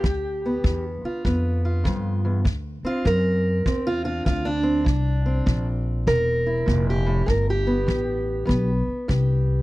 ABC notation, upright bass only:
X:1
M:4/4
L:1/8
Q:"Swing" 1/4=99
K:Gmix
V:1 name="Upright bass" clef=bass
D,,2 E,, z F,,2 G,,2 | D,, z ^F,,2 E,,2 D,,2 | C,,2 _B,,,2 E,,,2 F,,,2 | G,,,2 A,,,2 B,,, z C,,2 |]